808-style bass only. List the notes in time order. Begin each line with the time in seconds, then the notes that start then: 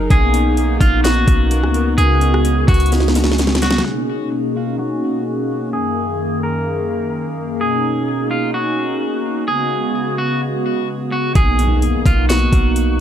0.10 B1
0.81 A#1
1.28 B1
1.63 C#2
1.98 C#2
2.68 C#2
11.35 B1
12.06 B1
12.53 B1